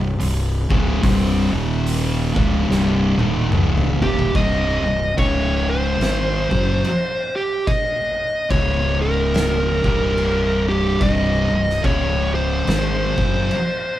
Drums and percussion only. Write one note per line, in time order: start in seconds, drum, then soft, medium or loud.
0.20 open hi-hat medium
0.70 kick loud
1.03 kick loud
1.03 open hi-hat medium
1.87 open hi-hat medium
2.36 kick loud
2.71 snare medium
3.19 high tom medium
3.52 mid tom loud
3.77 mid tom medium
4.02 floor tom loud
4.19 floor tom medium
4.35 kick loud
4.35 crash medium
5.18 kick loud
5.18 crash medium
6.01 snare loud
6.01 crash medium
6.51 kick loud
6.85 crash medium
7.67 kick loud
7.67 crash medium
8.51 kick loud
8.51 crash medium
9.34 snare loud
9.34 crash medium
9.84 kick loud
10.18 crash medium
11.01 kick loud
11.01 crash medium
11.69 snare soft
11.84 kick loud
11.84 crash medium
12.67 snare loud
12.67 crash medium
13.18 kick loud
13.51 crash medium